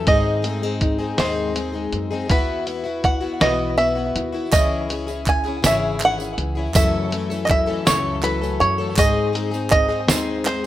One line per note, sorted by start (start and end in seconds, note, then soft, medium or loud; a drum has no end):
0.07 0.44 G#2 medium
0.07 1.14 G#2 medium
0.07 0.44 D#3 medium
0.07 0.41 G#3 medium
0.07 0.42 C4 medium
0.07 0.44 D#4 medium
0.07 0.45 G#4 medium
0.07 0.77 D#5 medium
0.07 kick medium
0.07 closed hi-hat medium
0.42 0.62 G#3 medium
0.42 0.63 A3 medium
0.42 0.62 C4 medium
0.42 0.62 D#4 medium
0.42 0.61 G#4 medium
0.42 closed hi-hat medium
0.62 1.01 G#3 soft
0.62 0.99 C4 soft
0.62 0.98 D#4 soft
0.62 0.97 G#4 soft
0.81 2.25 D#4 medium
0.81 kick medium
0.81 closed hi-hat medium
0.98 1.18 G#3 soft
0.98 1.18 C4 soft
0.98 1.18 D#4 soft
0.98 1.18 G#4 medium
1.17 1.88 D#2 medium
1.17 1.55 G#2 medium
1.17 1.55 D#3 medium
1.17 1.52 G#3 medium
1.17 1.54 C4 medium
1.17 1.54 D#4 medium
1.17 1.56 G#4 medium
1.17 2.31 C5 medium
1.17 snare medium
1.17 closed hi-hat medium
1.54 1.73 G#3 soft
1.54 1.74 C4 soft
1.54 1.73 D#4 soft
1.54 1.71 G#4 soft
1.54 closed hi-hat medium
1.72 2.12 G#3 soft
1.72 2.11 C4 soft
1.72 2.11 D#4 soft
1.72 2.10 G#4 soft
1.93 2.30 F#2 medium
1.93 2.26 C4 medium
1.93 closed hi-hat medium
2.11 2.28 G#3 soft
2.11 2.29 C4 soft
2.11 2.30 D#4 soft
2.11 2.29 G#4 soft
2.29 3.37 E2 medium
2.29 2.65 E3 medium
2.29 2.66 B3 medium
2.29 2.67 E4 medium
2.29 2.67 F#4 medium
2.29 3.00 B4 medium
2.29 kick medium
2.29 closed hi-hat medium
2.66 2.85 E3 medium
2.66 2.85 B3 soft
2.66 2.84 E4 medium
2.66 2.82 F#4 medium
2.66 closed hi-hat soft
2.84 3.23 B3 soft
2.84 3.21 E4 soft
2.84 3.19 F#4 medium
3.04 4.52 F#4 medium
3.04 3.41 F#5 medium
3.04 kick medium
3.04 closed hi-hat soft
3.21 3.40 B3 soft
3.21 3.41 E4 soft
3.21 3.40 F#4 soft
3.40 4.11 B1 medium
3.40 3.76 E3 medium
3.40 3.77 B3 medium
3.40 3.78 E4 medium
3.40 3.79 F#4 medium
3.40 3.77 D#5 medium
3.40 snare medium
3.40 closed hi-hat medium
3.77 3.96 E3 soft
3.77 3.97 B3 medium
3.77 3.96 E4 medium
3.77 3.94 F#4 medium
3.77 4.52 E5 medium
3.77 closed hi-hat medium
3.95 4.34 B3 soft
3.95 4.33 E4 soft
3.95 4.31 F#4 soft
4.15 4.53 D#2 medium
4.15 6.03 E4 medium
4.15 closed hi-hat medium
4.32 4.52 B3 soft
4.32 4.52 E4 soft
4.32 4.51 F#4 soft
4.52 5.60 C#2 medium
4.52 4.89 C#3 medium
4.52 4.88 E3 medium
4.52 4.89 C#4 medium
4.52 4.90 E4 medium
4.52 4.90 G#4 medium
4.52 5.28 D#5 medium
4.52 kick medium
4.52 clap medium
4.52 closed hi-hat medium
4.52 tambourine medium
4.89 5.07 E3 medium
4.89 5.08 C#4 medium
4.89 5.08 E4 medium
4.89 5.06 G#4 medium
4.89 closed hi-hat medium
5.07 5.46 C#4 soft
5.07 5.45 E4 soft
5.07 5.44 G#4 soft
5.07 tambourine soft
5.26 5.66 G#5 medium
5.26 kick medium
5.26 clap medium
5.26 closed hi-hat medium
5.45 5.64 E4 soft
5.45 5.63 G#4 soft
5.45 clap soft
5.49 5.63 C#4 soft
5.62 6.34 G#1 medium
5.62 6.00 C#3 medium
5.62 5.97 E3 medium
5.62 5.99 C#4 medium
5.62 6.00 E4 medium
5.62 6.01 G#4 medium
5.62 6.03 E5 medium
5.62 snare medium
5.62 closed hi-hat medium
5.62 tambourine medium
5.99 6.37 D#3 soft
5.99 6.18 E3 soft
5.99 6.19 C#4 soft
5.99 6.19 E4 medium
5.99 6.17 G#4 soft
5.99 clap medium
5.99 closed hi-hat medium
6.05 6.73 F#5 medium
6.18 6.57 C#4 soft
6.18 6.56 E4 soft
6.18 6.54 G#4 soft
6.18 tambourine soft
6.38 6.75 C#2 medium
6.38 6.74 E3 medium
6.38 closed hi-hat medium
6.55 6.74 C#4 soft
6.55 6.75 E4 medium
6.55 6.74 G#4 soft
6.74 7.11 F#2 medium
6.74 7.82 F#2 medium
6.74 7.11 C#3 medium
6.74 7.09 E3 medium
6.74 8.22 F#3 soft
6.74 7.11 A3 medium
6.74 7.12 C#4 medium
6.74 7.48 E4 medium
6.74 7.12 A4 medium
6.74 7.44 E5 medium
6.74 kick loud
6.74 clap medium
6.74 closed hi-hat medium
6.74 tambourine medium
7.11 7.30 E3 medium
7.11 7.30 A3 medium
7.11 7.30 C#4 medium
7.11 7.29 A4 medium
7.11 closed hi-hat medium
7.30 7.69 E3 soft
7.30 7.68 A3 soft
7.30 7.67 C#4 soft
7.30 7.66 A4 medium
7.30 tambourine soft
7.45 7.50 D#5 medium
7.45 clap medium
7.49 8.93 E4 medium
7.49 7.86 E5 medium
7.49 kick medium
7.49 closed hi-hat medium
7.67 7.85 E3 soft
7.67 7.86 A3 soft
7.67 7.86 C#4 soft
7.67 7.86 A4 soft
7.67 clap soft
7.85 8.57 C#2 medium
7.85 8.23 F#2 medium
7.85 8.23 C#3 medium
7.85 8.22 E3 medium
7.85 8.23 A3 medium
7.85 8.24 C#4 medium
7.85 8.24 A4 medium
7.85 8.21 C#5 medium
7.85 snare medium
7.85 closed hi-hat medium
7.85 tambourine medium
8.23 8.41 E3 soft
8.23 8.93 F#3 medium
8.23 8.42 A3 medium
8.23 8.42 C#4 medium
8.23 8.40 A4 medium
8.23 8.58 B4 medium
8.23 clap medium
8.23 closed hi-hat medium
8.41 8.80 E3 soft
8.41 8.80 A3 soft
8.41 8.79 C#4 soft
8.41 8.77 A4 soft
8.41 tambourine soft
8.60 8.98 F#2 medium
8.60 8.97 A3 medium
8.60 8.98 C#5 medium
8.60 closed hi-hat medium
8.78 8.96 E3 soft
8.78 8.97 A3 soft
8.78 8.98 C#4 soft
8.78 8.97 A4 medium
8.96 10.66 G#2 medium
8.96 10.05 G#2 medium
8.96 9.32 G#3 medium
8.96 9.33 C4 medium
8.96 9.34 D#4 medium
8.96 9.35 G#4 medium
8.96 9.70 D#5 medium
8.96 kick medium
8.96 clap medium
8.96 closed hi-hat medium
8.96 tambourine medium
9.33 9.52 G#3 medium
9.33 9.53 C4 medium
9.33 9.52 D#4 medium
9.33 9.50 G#4 medium
9.33 closed hi-hat medium
9.51 9.91 C4 soft
9.51 9.89 D#4 medium
9.51 9.87 G#4 soft
9.51 tambourine soft
9.70 10.66 D#4 medium
9.70 10.06 D#5 medium
9.70 kick medium
9.70 clap medium
9.70 closed hi-hat medium
9.88 10.08 C4 soft
9.88 10.09 D#4 soft
9.88 10.08 G#4 soft
9.88 clap soft
10.07 10.66 D#2 medium
10.07 10.44 G#3 medium
10.07 10.46 C4 medium
10.07 10.46 D#4 medium
10.07 10.47 G#4 medium
10.07 10.43 C5 medium
10.07 snare loud
10.07 closed hi-hat medium
10.07 tambourine medium
10.45 10.64 G#3 medium
10.45 10.65 C4 medium
10.45 10.64 D#4 medium
10.45 10.63 G#4 medium
10.45 10.66 C5 medium
10.45 clap medium
10.45 closed hi-hat medium